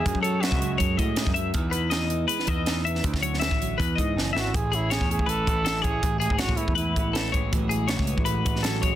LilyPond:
<<
  \new Staff \with { instrumentName = "Clean electric guitar" } { \time 4/4 \key a \lydian \tempo 4 = 160 r8 cis''8 e''4 cis''8 dis''4 e''8 | r8 b'8 dis''4 b'8 dis''4 e''8 | r8 cis''8 e''4 b'8 dis''4 e''8 | r8 gis'8 cis''4 b'4 a'8 cis''8 |
r8 gis'8 cis''4 b'4 a'8 cis''8 | r8 gis'8 cis''4 b'4 a'8 cis''8 | }
  \new Staff \with { instrumentName = "Trumpet" } { \time 4/4 \key a \lydian gis'8 a'8 fis'4 r2 | r1 | r2. r8 fis'8 | gis'8 e'8 gis'8 gis'8 a'4. gis'8~ |
gis'8 gis'8 fis'8 e'8 e'4. r8 | r1 | }
  \new Staff \with { instrumentName = "Clean electric guitar" } { \clef bass \time 4/4 \key a \lydian << { gis4 b16 cis'8. gis8 e'4. | <e b dis' e'>4 dis'4 gis16 b16 e'8 dis'8 b8 | r4 b16 cis'8. r4 dis'4 | r8 cis'8 e'8 e'4 e'4 cis'8 |
r8 gis8 b8 b4 b4 gis8 | <fis gis b e'>8 gis8 e'8 b4 b4 gis8 | } \\ { <fis, e>8 fis4 fis4. gis,8 fis,8 | e,8 e4 e2~ e8 | d8 fis4 fis8 e,8 e4 e8 | a,2 e4 e4 |
a,2 e4 e4 | a,2 a,4 fis4 | } >> }
  \new Staff \with { instrumentName = "Picked electric bass" } { \clef bass \time 4/4 \key a \lydian fis,16 fis,4 cis,8. fis,8 a,8. fis,8. | e,2 r8 e,4. | d,16 d,4 a,,8. e,8 gis,8 fis,,8 gis,,8 | a,,4~ a,,16 e,8 a,,8. a,,4 a,,8 |
a,,8. gis,,8 a,,16 a,16 e,8. a,,4 a,,8 | a,,4~ a,,16 cis,8 a,,8. a,,4 a,,8 | }
  \new DrumStaff \with { instrumentName = "Drums" } \drummode { \time 4/4 <hh bd>16 bd16 hh8 <hh sn>16 bd16 hh8 <hh bd>8 <hh bd>8 <hh sn>16 bd16 hh8 | <hh bd>8 hh8 <hh sn>8 hh8 hh16 sn16 <hh bd>8 <hh sn>8 hh16 sn16 | <hh bd>16 <bd sn>16 hh16 sn16 <hh sn>16 bd16 hh8 <hh bd>8 <hh bd>8 sn8 sn8 | <hh bd>8 hh8 <hh sn>16 bd16 hh16 bd16 hh8 <hh bd>8 <hh sn>8 <hh bd>8 |
<hh bd>8 hh16 bd16 <hh sn>16 bd16 hh16 bd16 hh8 <hh bd>8 <hh sn>8 <hh bd>8 | <hh bd>8 hh8 <hh sn>16 bd16 hh16 bd16 hh8 <hh bd>16 sn16 <hh sn>8 <hh bd>8 | }
>>